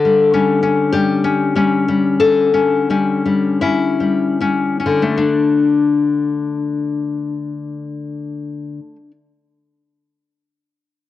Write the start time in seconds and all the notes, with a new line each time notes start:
Already playing: D3 A4
0.05 G3
0.34 G3 C#4
0.63 C#4
0.92 G3 G4
1.24 C#4
1.56 G3 C#4
1.88 G3
2.20 D3 A4
2.54 C#4
2.90 G3 C#4
3.26 G3
3.61 C#4 E4
4.00 G3
4.41 G3 C#4
4.80 C#4
4.86 D3
5.02 A3
5.18 D4